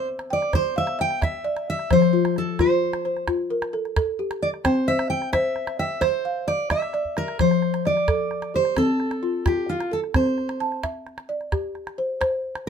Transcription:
0.00 0.30 C5 medium
0.19 calabash click soft
0.30 0.53 D5 medium
0.30 0.99 G5 medium
0.42 calabash click soft
0.53 0.99 C5 medium
0.53 0.77 C5 loud
0.53 calabash thump medium
0.53 calabash click medium
0.76 1.01 E5 medium
0.76 1.45 F5 medium
0.87 calabash click soft
0.99 1.20 E5 medium
0.99 1.23 G5 loud
0.99 calabash click soft
1.10 calabash click soft
1.22 1.67 E5 medium
1.22 1.69 E5 medium
1.22 calabash thump medium
1.22 calabash click medium
1.44 2.13 D5 medium
1.57 calabash click soft
1.70 1.92 E5 loud
1.79 calabash click soft
1.91 2.36 F3 medium
1.91 2.59 C5 medium
1.91 2.34 C5 medium
1.91 calabash thump medium
1.91 calabash click medium
2.02 calabash click soft
2.13 2.58 F4 medium
2.25 calabash click soft
2.36 2.61 A4 medium
2.36 calabash click soft
2.59 3.05 F4 medium
2.59 3.24 C5 medium
2.59 calabash thump medium
2.59 calabash click medium
2.93 calabash click soft
3.05 3.74 C5 medium
3.05 calabash click soft
3.17 calabash click soft
3.28 3.74 F4 medium
3.28 calabash thump medium
3.28 calabash click medium
3.50 4.19 A#4 medium
3.62 calabash click medium
3.73 3.95 A4 medium
3.73 calabash click soft
3.85 calabash click soft
3.96 4.42 A4 medium
3.96 calabash thump medium
3.96 calabash click medium
4.19 4.88 G4 medium
4.31 calabash click medium
4.42 4.49 D5 medium
4.54 calabash click soft
4.65 5.10 C4 medium
4.65 4.88 C5 medium
4.65 5.33 G5 medium
4.65 calabash thump medium
4.65 calabash click medium
4.88 5.32 C5 medium
4.88 5.09 E5 medium
4.99 calabash click medium
5.10 5.31 G5 medium
5.22 calabash click soft
5.33 5.79 C5 medium
5.33 5.78 E5 medium
5.33 calabash thump medium
5.33 calabash click medium
5.56 calabash click soft
5.67 calabash click medium
5.79 6.03 E5 medium
5.79 6.48 G5 medium
6.01 6.49 C5 medium
6.01 6.48 C5 medium
6.01 calabash thump medium
6.01 calabash click medium
6.25 6.94 F5 medium
6.48 6.71 D5 medium
6.48 calabash click soft
6.70 7.17 E5 medium
6.70 7.36 E5 medium
6.70 calabash thump medium
6.70 calabash click medium
6.82 calabash click soft
6.93 7.62 D5 medium
6.93 calabash click soft
7.05 calabash thump soft
7.17 7.38 A#4 medium
7.17 calabash click soft
7.28 calabash click soft
7.39 7.85 F3 medium
7.39 7.83 C5 medium
7.39 calabash thump medium
7.39 calabash click medium
7.51 calabash click soft
7.62 calabash click soft
7.74 calabash click soft
7.85 8.54 D5 medium
7.85 8.55 D5 medium
7.85 calabash click soft
7.97 calabash click soft
8.08 8.54 A4 medium
8.08 calabash thump medium
8.08 calabash click medium
8.31 calabash click soft
8.42 calabash click soft
8.54 9.23 G4 soft
8.54 8.76 C5 medium
8.65 calabash click soft
8.77 9.23 C4 medium
8.77 9.47 A4 medium
8.77 calabash thump medium
8.77 calabash click medium
9.00 calabash click soft
9.11 calabash click soft
9.23 9.44 F4 medium
9.46 9.92 F4 medium
9.46 9.70 G4 medium
9.46 calabash thump medium
9.46 calabash click medium
9.69 9.90 F4 medium
9.80 calabash click soft
9.91 10.37 A4 medium
9.91 9.99 A4 medium
10.04 calabash click soft
10.14 10.60 C4 medium
10.14 10.80 C5 medium
10.14 calabash thump medium
10.14 calabash click medium
10.26 calabash click soft
10.38 calabash click soft
10.49 calabash click soft
10.60 11.29 A5 medium
10.60 calabash click soft
10.72 calabash click soft
10.83 11.29 E5 medium
10.83 calabash thump medium
10.83 calabash click medium
11.07 calabash click soft
11.18 calabash click soft
11.29 11.98 D5 medium
11.41 calabash click soft
11.52 11.98 G4 medium
11.52 calabash thump medium
11.52 calabash click medium
11.75 calabash click soft
11.87 calabash click soft
11.98 12.20 C5 medium
12.21 12.67 C5 medium
12.21 calabash thump medium
12.21 calabash click medium
12.55 calabash click soft

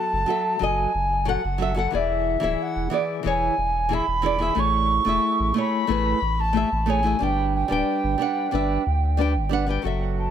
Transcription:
0.00 0.24 F#3 medium
0.00 0.24 F#4 medium
0.00 0.25 A4 medium
0.00 0.26 F#5 loud
0.00 0.65 A5 loud
0.13 0.25 F#1 medium
0.26 0.56 F#3 medium
0.26 0.57 F#4 medium
0.26 0.58 A4 medium
0.30 0.59 E5 loud
0.59 0.86 F#1 loud
0.59 0.90 F#3 loud
0.59 0.90 F#4 medium
0.59 0.91 A4 medium
0.63 0.92 D#5 loud
0.63 1.29 G#5 medium
0.94 1.37 F#1 medium
1.25 1.40 F#3 loud
1.25 1.40 F#4 medium
1.25 1.41 A4 medium
1.25 1.42 F#5 loud
1.25 1.97 F#5 medium
1.44 1.87 F#1 loud
1.58 1.73 F#3 medium
1.58 1.74 F#4 medium
1.58 1.75 A4 medium
1.58 1.75 E5 loud
1.75 1.88 F#3 medium
1.75 1.89 F#4 medium
1.75 1.90 A4 medium
1.75 1.90 F#5 medium
1.91 2.36 E1 loud
1.91 2.38 E3 medium
1.91 2.38 E4 medium
1.91 2.39 G#4 medium
1.95 2.40 D5 medium
1.95 2.63 E5 loud
2.40 2.56 D1 medium
2.40 2.87 E3 loud
2.40 2.88 E4 medium
2.40 2.88 G#4 medium
2.40 2.89 E5 loud
2.62 3.00 F#5 medium
2.76 2.88 E1 medium
2.90 3.20 E3 medium
2.90 3.21 E4 medium
2.90 3.22 G#4 medium
2.90 3.22 D5 medium
3.23 3.50 E1 loud
3.23 3.53 E3 loud
3.23 3.54 E4 medium
3.23 3.55 G#4 medium
3.27 3.55 C#5 loud
3.27 3.95 G#5 loud
3.58 4.01 E1 medium
3.89 4.04 E3 loud
3.89 4.04 E4 medium
3.89 4.05 G#4 medium
3.93 4.06 E5 loud
3.93 4.61 B5 loud
4.07 4.50 E1 loud
4.22 4.37 E3 medium
4.22 4.38 E4 medium
4.22 4.38 G#4 medium
4.22 4.39 D5 loud
4.38 4.52 E3 medium
4.38 4.53 E4 medium
4.38 4.53 G#4 medium
4.38 4.54 E5 medium
4.55 5.00 A1 medium
4.55 5.02 A3 medium
4.55 5.02 E4 medium
4.55 5.03 G#4 medium
4.55 5.04 C#5 medium
4.59 5.57 C#6 loud
5.05 5.19 E1 medium
5.05 5.51 A3 loud
5.05 5.52 E4 medium
5.05 5.53 G#4 medium
5.05 5.53 E5 loud
5.39 5.52 A1 medium
5.54 5.84 A3 medium
5.54 5.85 E4 medium
5.54 5.86 G#4 medium
5.58 5.86 C#5 medium
5.58 6.41 B5 loud
5.87 6.14 A1 medium
5.87 6.17 A3 loud
5.87 6.18 E4 medium
5.87 6.19 G#4 medium
5.87 6.19 B4 loud
6.21 6.65 A1 medium
6.40 6.91 A5 loud
6.53 6.67 A3 loud
6.53 6.68 E4 medium
6.53 6.69 G#4 medium
6.57 6.70 E5 loud
6.72 7.15 A1 loud
6.86 7.01 A3 medium
6.86 7.02 E4 medium
6.86 7.02 G#4 medium
6.86 7.03 C#5 loud
6.86 7.24 G#5 medium
7.03 7.16 A3 medium
7.03 7.17 E4 medium
7.03 7.18 G#4 medium
7.03 7.18 E5 medium
7.19 7.64 G1 medium
7.19 7.65 G3 medium
7.19 7.66 D4 medium
7.19 7.67 B4 medium
7.19 7.55 G5 loud
7.23 7.68 G5 medium
7.55 9.48 G5 loud
7.68 7.83 D1 medium
7.68 8.15 G3 medium
7.68 8.16 D4 medium
7.68 8.16 B4 medium
7.72 8.17 G5 loud
8.04 8.16 G1 medium
8.18 8.48 G3 medium
8.18 8.49 D4 medium
8.18 8.49 B4 medium
8.22 8.50 F#5 loud
8.51 8.78 G1 medium
8.51 8.81 G3 medium
8.51 8.82 D4 medium
8.51 8.82 B4 medium
8.51 8.83 E5 loud
8.86 9.37 D2 loud
9.17 9.31 G3 loud
9.17 9.32 D4 medium
9.17 9.33 B4 medium
9.17 9.33 G5 loud
9.35 9.78 G1 medium
9.49 9.65 G3 medium
9.49 9.65 D4 medium
9.49 9.66 B4 medium
9.49 9.66 F#5 loud
9.67 9.80 G3 medium
9.67 9.81 D4 medium
9.67 9.81 B4 medium
9.67 9.82 G5 medium
9.83 10.28 F#1 medium
9.83 10.29 F#3 medium
9.83 10.30 F#4 medium
9.83 10.30 A4 medium
9.83 10.31 E5 medium
10.19 10.31 A5 medium

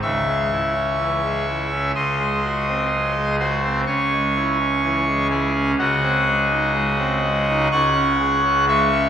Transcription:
0.02 1.92 C#2 medium
0.02 1.92 C#3 medium
0.02 1.92 E5 medium
0.02 1.92 C#6 medium
0.02 1.92 E6 loud
0.27 0.48 G#3 medium
0.51 0.73 E4 medium
0.75 0.96 C#4 soft
1.00 1.21 E3 medium
1.23 1.45 G#3 medium
1.47 1.69 E4 soft
1.72 1.92 C#4 medium
1.95 3.84 C#2 medium
1.95 3.84 C#3 medium
1.95 3.36 D#5 medium
1.95 3.36 C6 medium
1.95 3.36 D#6 loud
2.18 2.41 G#3 medium
2.44 2.65 F#4 medium
2.68 2.89 C4 medium
2.92 3.13 F#3 medium
3.16 3.37 G#3 medium
3.39 3.61 F#4 medium
3.39 3.81 C5 medium
3.39 3.81 C6 loud
3.63 3.84 C4 medium
3.87 5.75 C#2 medium
3.87 5.74 C#3 medium
3.87 5.28 C#5 medium
3.87 5.28 G#5 medium
3.87 5.27 C#6 loud
4.12 4.34 G#3 medium
4.36 4.58 E4 medium
4.59 4.81 C#4 medium
4.83 5.05 E3 medium
5.07 5.29 G#3 medium
5.30 5.52 E4 medium
5.30 5.71 G#4 medium
5.30 5.71 G#5 loud
5.55 5.75 C#4 medium
5.78 7.68 C#2 medium
5.78 7.68 C#3 medium
5.78 7.68 F#4 medium
5.78 7.68 D#5 medium
5.78 7.68 F#5 loud
6.03 6.24 C4 medium
6.26 6.48 G#3 medium
6.50 6.72 D#4 medium
6.74 6.96 G#3 medium
6.98 7.20 C4 medium
7.23 7.45 G#3 medium
7.48 7.69 D#4 medium
7.72 9.09 C#2 medium
7.72 9.09 C#3 medium
7.72 8.65 F#5 loud
7.72 8.65 C#6 loud
7.72 8.65 F#6 loud
7.95 8.17 C#4 medium
8.19 8.41 G#4 medium
8.44 8.65 C#4 medium
8.68 8.89 G#3 medium
8.68 9.09 E5 medium
8.68 9.09 C#6 medium
8.68 9.09 E6 loud
8.92 9.09 C#4 medium

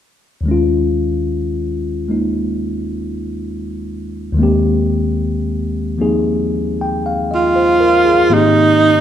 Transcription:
0.41 4.31 D#2 soft
0.41 4.33 D#3 soft
0.46 2.08 G#3 soft
0.46 4.39 C#4 soft
0.51 4.41 F4 soft
2.09 4.36 G#3 soft
2.09 4.38 A#3 soft
2.09 4.39 D#4 soft
4.32 8.27 D#2 medium
4.32 8.28 D#3 soft
4.37 8.30 G#3 soft
4.37 5.98 A#3 soft
4.41 5.99 C4 soft
4.41 8.30 G4 soft
5.98 8.29 F3 soft
5.98 8.29 A#3 soft
5.98 8.29 C4 soft
5.98 8.30 D#4 soft
5.98 8.04 G#4 soft
6.81 7.11 G5 soft
7.06 7.40 F5 soft
7.31 8.35 F4 medium
7.31 7.78 D#5 soft
7.56 7.98 C5 soft
7.80 8.11 A#4 soft
8.05 8.40 G#4 soft
8.30 9.01 G#2 soft
8.30 9.01 D#3 soft
8.30 9.01 A#3 soft
8.30 9.01 C4 soft
8.30 9.01 D#4 medium
8.30 9.01 G4 medium

